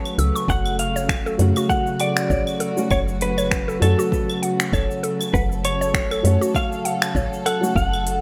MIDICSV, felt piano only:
0, 0, Header, 1, 2, 480
1, 0, Start_track
1, 0, Key_signature, 3, "minor"
1, 0, Tempo, 606061
1, 386, Time_signature, 4, 2, 24, 8
1, 6505, End_track
2, 0, Start_track
2, 0, Title_t, "Felt piano"
2, 0, Program_c, 0, 0
2, 0, Note_on_c, 0, 54, 75
2, 0, Note_on_c, 0, 57, 68
2, 0, Note_on_c, 0, 61, 73
2, 0, Note_on_c, 0, 66, 84
2, 1074, Note_off_c, 0, 54, 0
2, 1078, Note_off_c, 0, 57, 0
2, 1083, Note_off_c, 0, 61, 0
2, 1088, Note_off_c, 0, 66, 0
2, 1093, Note_on_c, 0, 54, 69
2, 1105, Note_on_c, 0, 57, 65
2, 1115, Note_on_c, 0, 49, 63
2, 1123, Note_on_c, 0, 66, 78
2, 2161, Note_off_c, 0, 54, 0
2, 2167, Note_off_c, 0, 57, 0
2, 2172, Note_off_c, 0, 49, 0
2, 2176, Note_off_c, 0, 66, 0
2, 2192, Note_on_c, 0, 54, 74
2, 2199, Note_on_c, 0, 57, 66
2, 2205, Note_on_c, 0, 61, 69
2, 2209, Note_on_c, 0, 66, 84
2, 2267, Note_off_c, 0, 54, 0
2, 2271, Note_off_c, 0, 57, 0
2, 2274, Note_off_c, 0, 61, 0
2, 2276, Note_off_c, 0, 66, 0
2, 3009, Note_on_c, 0, 54, 76
2, 3020, Note_on_c, 0, 57, 71
2, 3029, Note_on_c, 0, 61, 67
2, 3042, Note_on_c, 0, 66, 86
2, 4912, Note_off_c, 0, 54, 0
2, 4917, Note_off_c, 0, 57, 0
2, 4922, Note_off_c, 0, 61, 0
2, 4928, Note_off_c, 0, 66, 0
2, 4933, Note_on_c, 0, 54, 70
2, 4943, Note_on_c, 0, 57, 62
2, 4954, Note_on_c, 0, 61, 69
2, 4966, Note_on_c, 0, 66, 75
2, 6001, Note_off_c, 0, 54, 0
2, 6005, Note_off_c, 0, 57, 0
2, 6011, Note_off_c, 0, 61, 0
2, 6017, Note_off_c, 0, 66, 0
2, 6027, Note_on_c, 0, 54, 71
2, 6034, Note_on_c, 0, 57, 69
2, 6040, Note_on_c, 0, 61, 71
2, 6046, Note_on_c, 0, 66, 84
2, 6105, Note_off_c, 0, 54, 0
2, 6108, Note_off_c, 0, 57, 0
2, 6111, Note_off_c, 0, 61, 0
2, 6114, Note_off_c, 0, 66, 0
2, 6505, End_track
0, 0, End_of_file